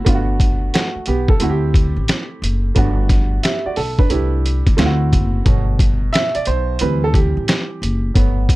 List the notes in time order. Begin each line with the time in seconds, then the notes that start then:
0.05 G1 A3 B3 D4 F4, kick, closed hi-hat
0.14 F#4
0.40 kick, closed hi-hat
0.74 A3 F#4, snare, closed hi-hat
0.96 muted upright bass stroke
1.06 B1 B3 G4, closed hi-hat
1.28 A4, kick
1.40 D2 A3 C4 E4 F#4, closed hi-hat
1.49 G4
1.74 kick, closed hi-hat
1.96 A1
2.08 snare, closed hi-hat
2.42 F#1, closed hi-hat
2.75 G1 A3 B3 D4 F#4, kick, closed hi-hat
3.09 kick, snare, closed hi-hat
3.43 G4 E5, snare, closed hi-hat
3.66 F#4 D5, muted upright bass stroke
3.76 B1 A4, open hi-hat
3.99 D4 B4, kick
4.10 C2 A3 D4 E4 G4, closed hi-hat
4.46 closed hi-hat
4.67 D2, kick, closed hi-hat
4.77 D2 A3 C4 E4 F4, snare, closed hi-hat
4.86 F#4
5.13 F#1, kick, closed hi-hat
5.45 G1 B2 F#3 A3, kick, closed hi-hat
5.79 kick, closed hi-hat
6.13 E5, snare, closed hi-hat
6.35 D5, muted upright bass stroke, closed hi-hat
6.45 B1 C5, closed hi-hat
6.79 D2 E3 G3 C4 B4, closed hi-hat
7.04 A4
7.14 G4, kick, closed hi-hat
7.37 A1
7.48 snare, closed hi-hat
7.82 F#1, closed hi-hat
8.14 G1 F#3 A3 B3, kick, closed hi-hat
8.49 kick, closed hi-hat